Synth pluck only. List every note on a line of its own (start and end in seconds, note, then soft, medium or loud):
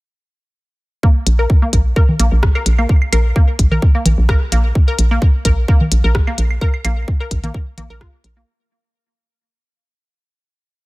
1.03 1.05 A#3 medium
1.39 1.41 A#4 medium
1.62 1.64 A#3 medium
1.96 1.98 A#4 medium
2.20 2.22 A#3 medium
2.55 2.57 A#4 medium
2.79 2.81 A#3 medium
3.13 3.15 A#4 medium
3.36 3.38 A#3 medium
3.71 3.73 A#4 medium
3.95 3.97 A#3 medium
4.29 4.31 A#4 medium
4.52 4.54 A#3 medium
4.88 4.90 A#4 medium
5.11 5.13 A#3 medium
5.45 5.47 A#4 medium
5.68 5.70 A#3 medium
6.04 6.06 A#4 medium
6.27 6.29 A#3 medium
6.61 6.63 A#4 medium
6.85 6.87 A#3 medium
7.20 7.22 A#4 medium
7.44 7.46 A#3 medium
7.78 7.82 A#3 medium
7.90 7.93 A#4 loud
8.01 8.04 F4 medium
8.37 8.39 A#3 medium